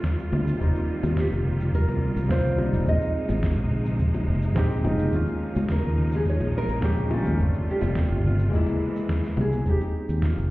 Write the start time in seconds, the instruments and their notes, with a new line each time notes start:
Already playing: string section C3 G3 A3 F4, grand piano A3 C4 D4 F4
0.04 kick, snare, cabasa
0.19 cabasa
0.32 fingered electric bass D2, high bongo, low conga
0.47 cabasa
0.56 fingered electric bass F1, string section D#3, grand piano G3 A#3, kick
0.61 string section A#3, grand piano C4 D#4, cabasa
0.76 cabasa
1.03 fingered electric bass D#2, high bongo, cabasa
1.17 nylon-string guitar G4, kick, snare, cabasa
1.31 fingered electric bass F1, cabasa
1.45 low conga
1.60 cabasa
1.73 nylon-string guitar A#4, kick, cabasa
1.88 fingered electric bass C2, high bongo, cabasa
2.16 fingered electric bass C2, cabasa
2.28 grand piano G3 A#3 C4 F4, nylon-string guitar C5, kick, snare, cabasa
2.45 low conga, cabasa
2.56 grand piano G3 A#3 C4 D#4, high bongo
2.73 fingered electric bass F1, low conga, cabasa
2.83 fingered electric bass A#1, grand piano G#3 C4, kick, cabasa
2.87 string section C3 G#3 A#3 D#4, grand piano D#4 F4, nylon-string guitar D#5
3.01 cabasa
3.29 fingered electric bass G#1, high bongo, cabasa
3.43 kick, snare, cabasa
3.57 fingered electric bass A#1, cabasa
3.71 low conga
3.85 cabasa
3.99 kick, low conga, cabasa
4.14 high bongo, cabasa
4.28 fingered electric bass F1
4.42 cabasa
4.54 fingered electric bass A#1, grand piano G#3 C4 D#4 G4, kick, snare, cabasa
4.71 cabasa
4.83 fingered electric bass F1, grand piano G#3 C4 D#4 F4, nylon-string guitar D#4, high bongo, low conga
4.99 cabasa
5.10 fingered electric bass D#2, string section C#3 F3 G#3 D#4, grand piano G#3 A#3, kick, cabasa
5.14 grand piano C#4 F4, nylon-string guitar F4
5.27 cabasa
5.55 fingered electric bass C#2, high bongo, cabasa
5.69 nylon-string guitar A#4, kick, snare, cabasa
5.83 fingered electric bass D#2, cabasa
5.97 low conga
6.12 nylon-string guitar G#4, cabasa
6.25 kick, cabasa
6.29 nylon-string guitar C#5
6.40 fingered electric bass A#1, high bongo, cabasa
6.58 nylon-string guitar A#4
6.68 fingered electric bass A#1, cabasa
6.81 grand piano G#3 A#3 C#4 G4, kick, snare, cabasa
6.97 low conga, cabasa
7.09 grand piano G#3 A#3 C#4 F4, high bongo
7.14 nylon-string guitar A4
7.25 fingered electric bass D#2, low conga, cabasa
7.35 fingered electric bass G1, grand piano A3 C4, kick, cabasa
7.40 string section C3 G3 A3 F4, grand piano D4 F4
7.54 cabasa
7.71 nylon-string guitar G4
7.81 fingered electric bass F1, high bongo, cabasa
7.95 kick, snare, cabasa
8.10 fingered electric bass G1, cabasa
8.24 nylon-string guitar F4, low conga
8.39 cabasa
8.49 grand piano G#3 A#3, string section G#3 A#3, kick, low conga, cabasa
8.53 string section E3, nylon-string guitar E4, grand piano E4 D#5
8.66 high bongo, cabasa
8.96 cabasa
9.09 kick, snare, cabasa
9.24 snare, cabasa
9.37 fingered electric bass C2, nylon-string guitar G#4, high bongo, low conga
9.52 cabasa
9.63 fingered electric bass F1, grand piano G#3 C4, kick, cabasa
9.67 grand piano D#4 G4, nylon-string guitar G4
9.81 high bongo, cabasa
10.09 fingered electric bass D#2, cabasa
10.22 nylon-string guitar F4, kick, snare, cabasa
10.37 fingered electric bass F1, cabasa